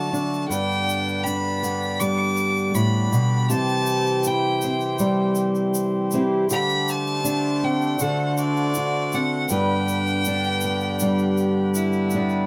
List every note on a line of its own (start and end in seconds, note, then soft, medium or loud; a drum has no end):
0.00 0.46 D3 medium
0.00 3.45 D3 medium
0.00 0.46 F#3 medium
0.00 0.47 A3 medium
0.00 0.12 D4 medium
0.00 0.47 F#4 medium
0.00 0.49 F#4 medium
0.00 0.47 A4 medium
0.00 3.46 D5 medium
0.00 0.47 A5 loud
0.13 0.46 D4 medium
0.13 shaker medium
0.34 shaker soft
0.48 2.74 G2 medium
0.48 3.47 B3 medium
0.48 7.96 G4 medium
0.48 3.46 B4 medium
0.48 1.25 G5 loud
0.48 shaker medium
0.72 shaker soft
0.89 shaker medium
1.08 shaker soft
1.23 3.50 D4 medium
1.23 2.00 B5 loud
1.23 shaker medium
1.63 3.46 B3 medium
1.63 shaker medium
1.83 shaker soft
1.99 4.99 G3 medium
1.99 2.77 D6 loud
1.99 shaker loud
2.37 shaker medium
2.57 shaker soft
2.74 3.12 A2 medium
2.74 3.50 B5 medium
2.74 shaker medium
3.12 3.50 B2 medium
3.12 shaker medium
3.47 6.49 C3 medium
3.47 6.45 E3 medium
3.47 6.45 C4 medium
3.47 6.12 G4 medium
3.47 7.94 C5 medium
3.47 4.28 A5 loud
3.47 shaker medium
3.69 shaker soft
3.86 shaker medium
4.06 shaker soft
4.24 6.13 E4 medium
4.24 5.38 G5 loud
4.24 shaker loud
4.61 6.12 C4 medium
4.61 shaker medium
4.81 shaker soft
4.99 6.45 G3 medium
4.99 shaker medium
5.35 shaker medium
5.55 shaker soft
5.74 shaker loud
6.11 6.46 C4 medium
6.11 6.46 E4 medium
6.11 6.50 G4 medium
6.11 shaker medium
6.50 7.95 D3 medium
6.50 12.46 D3 medium
6.50 9.46 A3 medium
6.50 8.00 G4 medium
6.50 6.91 B5 loud
6.50 shaker loud
6.70 shaker soft
6.88 7.66 A5 loud
6.88 shaker medium
7.07 shaker soft
7.24 8.77 D4 medium
7.24 shaker loud
7.63 7.96 C4 medium
7.63 8.03 G5 loud
7.82 shaker soft
7.98 9.46 D3 medium
7.98 9.47 F#4 medium
7.98 9.47 C5 medium
7.98 shaker loud
8.02 9.46 A4 medium
8.02 8.38 F#5 medium
8.38 9.15 D5 loud
8.38 shaker medium
8.57 shaker soft
8.74 9.46 F#4 medium
8.74 shaker loud
9.12 9.46 C4 medium
9.12 9.49 F#5 medium
9.12 shaker medium
9.48 12.47 G2 medium
9.48 12.46 B3 medium
9.48 12.46 G4 medium
9.48 12.46 B4 medium
9.48 12.13 B4 medium
9.48 11.70 G5 loud
9.48 shaker loud
9.88 shaker medium
10.07 shaker soft
10.25 12.13 D4 medium
10.25 shaker medium
10.44 shaker soft
10.61 12.13 B3 medium
10.61 shaker medium
10.80 shaker soft
10.99 12.46 G3 medium
10.99 shaker medium
11.19 shaker soft
11.37 shaker medium
11.74 12.47 E4 medium
11.74 shaker medium
11.93 shaker soft
12.10 shaker medium
12.15 12.46 B3 medium
12.15 12.47 D4 medium
12.15 12.47 B4 medium
12.29 shaker soft